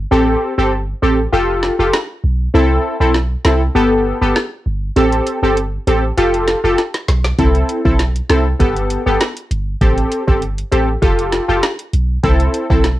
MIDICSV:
0, 0, Header, 1, 4, 480
1, 0, Start_track
1, 0, Key_signature, 0, "major"
1, 0, Tempo, 606061
1, 91, Time_signature, 4, 2, 24, 8
1, 10293, End_track
2, 0, Start_track
2, 0, Title_t, "Synth stab"
2, 0, Program_c, 0, 62
2, 88, Note_on_c, 0, 60, 95
2, 90, Note_on_c, 0, 67, 85
2, 92, Note_on_c, 0, 69, 101
2, 426, Note_off_c, 0, 60, 0
2, 427, Note_off_c, 0, 67, 0
2, 428, Note_off_c, 0, 69, 0
2, 457, Note_on_c, 0, 60, 80
2, 458, Note_on_c, 0, 67, 75
2, 461, Note_on_c, 0, 69, 88
2, 578, Note_off_c, 0, 60, 0
2, 579, Note_off_c, 0, 67, 0
2, 581, Note_off_c, 0, 69, 0
2, 809, Note_on_c, 0, 60, 74
2, 811, Note_on_c, 0, 67, 72
2, 813, Note_on_c, 0, 69, 85
2, 944, Note_off_c, 0, 60, 0
2, 945, Note_off_c, 0, 67, 0
2, 947, Note_off_c, 0, 69, 0
2, 1049, Note_on_c, 0, 65, 91
2, 1052, Note_on_c, 0, 67, 84
2, 1054, Note_on_c, 0, 69, 101
2, 1387, Note_off_c, 0, 65, 0
2, 1388, Note_off_c, 0, 67, 0
2, 1389, Note_off_c, 0, 69, 0
2, 1417, Note_on_c, 0, 65, 77
2, 1420, Note_on_c, 0, 67, 71
2, 1422, Note_on_c, 0, 69, 85
2, 1539, Note_off_c, 0, 65, 0
2, 1540, Note_off_c, 0, 67, 0
2, 1541, Note_off_c, 0, 69, 0
2, 2010, Note_on_c, 0, 60, 93
2, 2012, Note_on_c, 0, 64, 84
2, 2015, Note_on_c, 0, 69, 107
2, 2347, Note_off_c, 0, 60, 0
2, 2348, Note_off_c, 0, 64, 0
2, 2350, Note_off_c, 0, 69, 0
2, 2378, Note_on_c, 0, 60, 78
2, 2380, Note_on_c, 0, 64, 75
2, 2382, Note_on_c, 0, 69, 88
2, 2499, Note_off_c, 0, 60, 0
2, 2500, Note_off_c, 0, 64, 0
2, 2501, Note_off_c, 0, 69, 0
2, 2730, Note_on_c, 0, 60, 76
2, 2732, Note_on_c, 0, 64, 70
2, 2734, Note_on_c, 0, 69, 86
2, 2865, Note_off_c, 0, 60, 0
2, 2866, Note_off_c, 0, 64, 0
2, 2867, Note_off_c, 0, 69, 0
2, 2969, Note_on_c, 0, 59, 94
2, 2972, Note_on_c, 0, 67, 84
2, 2974, Note_on_c, 0, 69, 102
2, 3307, Note_off_c, 0, 59, 0
2, 3308, Note_off_c, 0, 67, 0
2, 3309, Note_off_c, 0, 69, 0
2, 3337, Note_on_c, 0, 59, 75
2, 3339, Note_on_c, 0, 67, 70
2, 3341, Note_on_c, 0, 69, 89
2, 3459, Note_off_c, 0, 59, 0
2, 3460, Note_off_c, 0, 67, 0
2, 3460, Note_off_c, 0, 69, 0
2, 3929, Note_on_c, 0, 60, 93
2, 3931, Note_on_c, 0, 67, 81
2, 3934, Note_on_c, 0, 69, 101
2, 4267, Note_off_c, 0, 60, 0
2, 4268, Note_off_c, 0, 67, 0
2, 4269, Note_off_c, 0, 69, 0
2, 4298, Note_on_c, 0, 60, 79
2, 4299, Note_on_c, 0, 67, 73
2, 4302, Note_on_c, 0, 69, 91
2, 4419, Note_off_c, 0, 60, 0
2, 4420, Note_off_c, 0, 67, 0
2, 4421, Note_off_c, 0, 69, 0
2, 4650, Note_on_c, 0, 60, 76
2, 4653, Note_on_c, 0, 67, 70
2, 4655, Note_on_c, 0, 69, 87
2, 4785, Note_off_c, 0, 60, 0
2, 4787, Note_off_c, 0, 67, 0
2, 4788, Note_off_c, 0, 69, 0
2, 4890, Note_on_c, 0, 65, 88
2, 4893, Note_on_c, 0, 67, 87
2, 4895, Note_on_c, 0, 69, 98
2, 5227, Note_off_c, 0, 65, 0
2, 5229, Note_off_c, 0, 67, 0
2, 5230, Note_off_c, 0, 69, 0
2, 5256, Note_on_c, 0, 65, 76
2, 5258, Note_on_c, 0, 67, 71
2, 5261, Note_on_c, 0, 69, 89
2, 5378, Note_off_c, 0, 65, 0
2, 5379, Note_off_c, 0, 67, 0
2, 5381, Note_off_c, 0, 69, 0
2, 5850, Note_on_c, 0, 60, 89
2, 5851, Note_on_c, 0, 64, 89
2, 5854, Note_on_c, 0, 69, 101
2, 6187, Note_off_c, 0, 60, 0
2, 6188, Note_off_c, 0, 64, 0
2, 6189, Note_off_c, 0, 69, 0
2, 6216, Note_on_c, 0, 60, 79
2, 6219, Note_on_c, 0, 64, 76
2, 6222, Note_on_c, 0, 69, 85
2, 6338, Note_off_c, 0, 60, 0
2, 6340, Note_off_c, 0, 64, 0
2, 6341, Note_off_c, 0, 69, 0
2, 6569, Note_on_c, 0, 60, 80
2, 6572, Note_on_c, 0, 64, 72
2, 6575, Note_on_c, 0, 69, 86
2, 6705, Note_off_c, 0, 60, 0
2, 6706, Note_off_c, 0, 64, 0
2, 6708, Note_off_c, 0, 69, 0
2, 6807, Note_on_c, 0, 59, 94
2, 6810, Note_on_c, 0, 67, 82
2, 6813, Note_on_c, 0, 69, 99
2, 7146, Note_off_c, 0, 59, 0
2, 7147, Note_off_c, 0, 67, 0
2, 7149, Note_off_c, 0, 69, 0
2, 7176, Note_on_c, 0, 59, 77
2, 7178, Note_on_c, 0, 67, 71
2, 7181, Note_on_c, 0, 69, 87
2, 7298, Note_off_c, 0, 59, 0
2, 7299, Note_off_c, 0, 67, 0
2, 7301, Note_off_c, 0, 69, 0
2, 7771, Note_on_c, 0, 60, 96
2, 7773, Note_on_c, 0, 67, 85
2, 7775, Note_on_c, 0, 69, 99
2, 8107, Note_off_c, 0, 60, 0
2, 8109, Note_off_c, 0, 67, 0
2, 8110, Note_off_c, 0, 69, 0
2, 8137, Note_on_c, 0, 60, 80
2, 8139, Note_on_c, 0, 67, 74
2, 8142, Note_on_c, 0, 69, 85
2, 8258, Note_off_c, 0, 60, 0
2, 8260, Note_off_c, 0, 67, 0
2, 8261, Note_off_c, 0, 69, 0
2, 8487, Note_on_c, 0, 60, 78
2, 8490, Note_on_c, 0, 67, 70
2, 8492, Note_on_c, 0, 69, 83
2, 8623, Note_off_c, 0, 60, 0
2, 8625, Note_off_c, 0, 67, 0
2, 8626, Note_off_c, 0, 69, 0
2, 8727, Note_on_c, 0, 65, 93
2, 8730, Note_on_c, 0, 67, 86
2, 8732, Note_on_c, 0, 69, 104
2, 9066, Note_off_c, 0, 65, 0
2, 9067, Note_off_c, 0, 67, 0
2, 9068, Note_off_c, 0, 69, 0
2, 9094, Note_on_c, 0, 65, 76
2, 9097, Note_on_c, 0, 67, 72
2, 9098, Note_on_c, 0, 69, 85
2, 9217, Note_off_c, 0, 65, 0
2, 9218, Note_off_c, 0, 67, 0
2, 9219, Note_off_c, 0, 69, 0
2, 9687, Note_on_c, 0, 60, 96
2, 9690, Note_on_c, 0, 64, 84
2, 9693, Note_on_c, 0, 69, 104
2, 10026, Note_off_c, 0, 60, 0
2, 10027, Note_off_c, 0, 64, 0
2, 10029, Note_off_c, 0, 69, 0
2, 10055, Note_on_c, 0, 60, 78
2, 10057, Note_on_c, 0, 64, 75
2, 10060, Note_on_c, 0, 69, 91
2, 10178, Note_off_c, 0, 60, 0
2, 10179, Note_off_c, 0, 64, 0
2, 10180, Note_off_c, 0, 69, 0
2, 10293, End_track
3, 0, Start_track
3, 0, Title_t, "808-style bass"
3, 0, Program_c, 1, 38
3, 91, Note_on_c, 1, 33, 108
3, 282, Note_off_c, 1, 33, 0
3, 459, Note_on_c, 1, 31, 91
3, 740, Note_off_c, 1, 31, 0
3, 812, Note_on_c, 1, 33, 87
3, 1003, Note_off_c, 1, 33, 0
3, 1052, Note_on_c, 1, 29, 105
3, 1344, Note_off_c, 1, 29, 0
3, 1420, Note_on_c, 1, 29, 94
3, 1509, Note_off_c, 1, 29, 0
3, 1772, Note_on_c, 1, 35, 90
3, 1963, Note_off_c, 1, 35, 0
3, 2013, Note_on_c, 1, 36, 112
3, 2203, Note_off_c, 1, 36, 0
3, 2379, Note_on_c, 1, 35, 87
3, 2660, Note_off_c, 1, 35, 0
3, 2732, Note_on_c, 1, 36, 94
3, 2923, Note_off_c, 1, 36, 0
3, 2972, Note_on_c, 1, 31, 106
3, 3264, Note_off_c, 1, 31, 0
3, 3339, Note_on_c, 1, 31, 99
3, 3429, Note_off_c, 1, 31, 0
3, 3691, Note_on_c, 1, 31, 91
3, 3882, Note_off_c, 1, 31, 0
3, 3931, Note_on_c, 1, 33, 106
3, 4122, Note_off_c, 1, 33, 0
3, 4297, Note_on_c, 1, 31, 87
3, 4579, Note_off_c, 1, 31, 0
3, 4651, Note_on_c, 1, 33, 94
3, 4842, Note_off_c, 1, 33, 0
3, 4892, Note_on_c, 1, 29, 102
3, 5184, Note_off_c, 1, 29, 0
3, 5260, Note_on_c, 1, 29, 94
3, 5349, Note_off_c, 1, 29, 0
3, 5611, Note_on_c, 1, 35, 93
3, 5802, Note_off_c, 1, 35, 0
3, 5851, Note_on_c, 1, 36, 117
3, 6042, Note_off_c, 1, 36, 0
3, 6222, Note_on_c, 1, 35, 88
3, 6501, Note_off_c, 1, 35, 0
3, 6572, Note_on_c, 1, 36, 91
3, 6763, Note_off_c, 1, 36, 0
3, 6812, Note_on_c, 1, 31, 110
3, 7104, Note_off_c, 1, 31, 0
3, 7179, Note_on_c, 1, 31, 96
3, 7268, Note_off_c, 1, 31, 0
3, 7532, Note_on_c, 1, 31, 90
3, 7723, Note_off_c, 1, 31, 0
3, 7771, Note_on_c, 1, 33, 110
3, 7962, Note_off_c, 1, 33, 0
3, 8141, Note_on_c, 1, 31, 89
3, 8421, Note_off_c, 1, 31, 0
3, 8492, Note_on_c, 1, 33, 92
3, 8683, Note_off_c, 1, 33, 0
3, 8730, Note_on_c, 1, 29, 107
3, 9023, Note_off_c, 1, 29, 0
3, 9099, Note_on_c, 1, 29, 93
3, 9188, Note_off_c, 1, 29, 0
3, 9450, Note_on_c, 1, 35, 91
3, 9642, Note_off_c, 1, 35, 0
3, 9690, Note_on_c, 1, 36, 114
3, 9882, Note_off_c, 1, 36, 0
3, 10060, Note_on_c, 1, 35, 82
3, 10293, Note_off_c, 1, 35, 0
3, 10293, End_track
4, 0, Start_track
4, 0, Title_t, "Drums"
4, 1290, Note_on_c, 9, 38, 66
4, 1369, Note_off_c, 9, 38, 0
4, 1533, Note_on_c, 9, 37, 89
4, 1533, Note_on_c, 9, 38, 109
4, 1612, Note_off_c, 9, 37, 0
4, 1612, Note_off_c, 9, 38, 0
4, 2491, Note_on_c, 9, 38, 69
4, 2570, Note_off_c, 9, 38, 0
4, 2730, Note_on_c, 9, 38, 99
4, 2810, Note_off_c, 9, 38, 0
4, 3452, Note_on_c, 9, 37, 93
4, 3452, Note_on_c, 9, 38, 112
4, 3531, Note_off_c, 9, 37, 0
4, 3531, Note_off_c, 9, 38, 0
4, 3931, Note_on_c, 9, 42, 64
4, 4010, Note_off_c, 9, 42, 0
4, 4059, Note_on_c, 9, 42, 52
4, 4138, Note_off_c, 9, 42, 0
4, 4171, Note_on_c, 9, 42, 74
4, 4250, Note_off_c, 9, 42, 0
4, 4412, Note_on_c, 9, 42, 66
4, 4491, Note_off_c, 9, 42, 0
4, 4652, Note_on_c, 9, 42, 77
4, 4731, Note_off_c, 9, 42, 0
4, 4891, Note_on_c, 9, 42, 76
4, 4971, Note_off_c, 9, 42, 0
4, 5021, Note_on_c, 9, 42, 55
4, 5101, Note_off_c, 9, 42, 0
4, 5129, Note_on_c, 9, 38, 67
4, 5130, Note_on_c, 9, 42, 78
4, 5208, Note_off_c, 9, 38, 0
4, 5209, Note_off_c, 9, 42, 0
4, 5372, Note_on_c, 9, 38, 57
4, 5372, Note_on_c, 9, 42, 73
4, 5451, Note_off_c, 9, 38, 0
4, 5451, Note_off_c, 9, 42, 0
4, 5499, Note_on_c, 9, 38, 67
4, 5499, Note_on_c, 9, 42, 54
4, 5578, Note_off_c, 9, 38, 0
4, 5578, Note_off_c, 9, 42, 0
4, 5611, Note_on_c, 9, 38, 87
4, 5613, Note_on_c, 9, 42, 74
4, 5691, Note_off_c, 9, 38, 0
4, 5692, Note_off_c, 9, 42, 0
4, 5739, Note_on_c, 9, 38, 79
4, 5818, Note_off_c, 9, 38, 0
4, 5852, Note_on_c, 9, 36, 117
4, 5852, Note_on_c, 9, 42, 65
4, 5931, Note_off_c, 9, 36, 0
4, 5931, Note_off_c, 9, 42, 0
4, 5981, Note_on_c, 9, 42, 53
4, 6060, Note_off_c, 9, 42, 0
4, 6092, Note_on_c, 9, 42, 79
4, 6172, Note_off_c, 9, 42, 0
4, 6221, Note_on_c, 9, 36, 97
4, 6300, Note_off_c, 9, 36, 0
4, 6331, Note_on_c, 9, 38, 69
4, 6333, Note_on_c, 9, 42, 69
4, 6411, Note_off_c, 9, 38, 0
4, 6412, Note_off_c, 9, 42, 0
4, 6462, Note_on_c, 9, 42, 50
4, 6541, Note_off_c, 9, 42, 0
4, 6571, Note_on_c, 9, 38, 99
4, 6572, Note_on_c, 9, 42, 71
4, 6650, Note_off_c, 9, 38, 0
4, 6652, Note_off_c, 9, 42, 0
4, 6811, Note_on_c, 9, 36, 96
4, 6812, Note_on_c, 9, 42, 72
4, 6890, Note_off_c, 9, 36, 0
4, 6891, Note_off_c, 9, 42, 0
4, 6942, Note_on_c, 9, 42, 52
4, 7021, Note_off_c, 9, 42, 0
4, 7050, Note_on_c, 9, 42, 81
4, 7129, Note_off_c, 9, 42, 0
4, 7291, Note_on_c, 9, 42, 70
4, 7292, Note_on_c, 9, 37, 91
4, 7292, Note_on_c, 9, 38, 115
4, 7370, Note_off_c, 9, 42, 0
4, 7371, Note_off_c, 9, 37, 0
4, 7371, Note_off_c, 9, 38, 0
4, 7419, Note_on_c, 9, 42, 57
4, 7498, Note_off_c, 9, 42, 0
4, 7532, Note_on_c, 9, 42, 74
4, 7611, Note_off_c, 9, 42, 0
4, 7771, Note_on_c, 9, 36, 116
4, 7771, Note_on_c, 9, 42, 68
4, 7850, Note_off_c, 9, 36, 0
4, 7850, Note_off_c, 9, 42, 0
4, 7901, Note_on_c, 9, 42, 54
4, 7980, Note_off_c, 9, 42, 0
4, 8011, Note_on_c, 9, 42, 76
4, 8091, Note_off_c, 9, 42, 0
4, 8140, Note_on_c, 9, 36, 99
4, 8220, Note_off_c, 9, 36, 0
4, 8252, Note_on_c, 9, 42, 66
4, 8331, Note_off_c, 9, 42, 0
4, 8380, Note_on_c, 9, 42, 49
4, 8459, Note_off_c, 9, 42, 0
4, 8491, Note_on_c, 9, 42, 74
4, 8570, Note_off_c, 9, 42, 0
4, 8730, Note_on_c, 9, 36, 91
4, 8731, Note_on_c, 9, 42, 73
4, 8809, Note_off_c, 9, 36, 0
4, 8810, Note_off_c, 9, 42, 0
4, 8860, Note_on_c, 9, 42, 52
4, 8939, Note_off_c, 9, 42, 0
4, 8968, Note_on_c, 9, 38, 67
4, 8968, Note_on_c, 9, 42, 82
4, 9047, Note_off_c, 9, 38, 0
4, 9047, Note_off_c, 9, 42, 0
4, 9209, Note_on_c, 9, 42, 69
4, 9211, Note_on_c, 9, 37, 92
4, 9211, Note_on_c, 9, 38, 114
4, 9289, Note_off_c, 9, 42, 0
4, 9290, Note_off_c, 9, 37, 0
4, 9290, Note_off_c, 9, 38, 0
4, 9337, Note_on_c, 9, 42, 55
4, 9416, Note_off_c, 9, 42, 0
4, 9451, Note_on_c, 9, 42, 74
4, 9530, Note_off_c, 9, 42, 0
4, 9690, Note_on_c, 9, 36, 122
4, 9690, Note_on_c, 9, 42, 62
4, 9769, Note_off_c, 9, 36, 0
4, 9769, Note_off_c, 9, 42, 0
4, 9819, Note_on_c, 9, 42, 53
4, 9898, Note_off_c, 9, 42, 0
4, 9930, Note_on_c, 9, 42, 82
4, 10010, Note_off_c, 9, 42, 0
4, 10060, Note_on_c, 9, 36, 98
4, 10139, Note_off_c, 9, 36, 0
4, 10169, Note_on_c, 9, 38, 66
4, 10171, Note_on_c, 9, 42, 68
4, 10248, Note_off_c, 9, 38, 0
4, 10250, Note_off_c, 9, 42, 0
4, 10293, End_track
0, 0, End_of_file